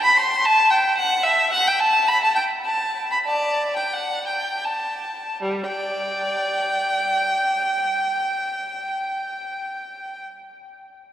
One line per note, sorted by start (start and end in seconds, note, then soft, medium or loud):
0.04 0.17 B5 medium
0.17 0.44 C6 medium
0.45 0.71 A5 loud
0.71 0.97 G5 medium
0.97 1.24 F#5 medium
1.23 1.51 E5 medium
1.52 1.65 F#5 loud
1.67 1.80 G5 medium
1.80 2.07 A5 medium
2.08 2.22 B5 medium
2.23 2.36 A5 medium
2.35 2.43 G5 medium
2.65 3.10 A5 medium
3.12 3.18 B5 medium
3.27 3.72 D5 medium
3.27 3.75 A5 medium
3.76 3.92 G5 medium
3.93 4.27 F#5 medium
4.27 4.62 G5 medium
4.64 5.43 A5 medium
5.42 5.66 G3 medium
5.66 7.19 D5 medium
5.66 10.23 G5 medium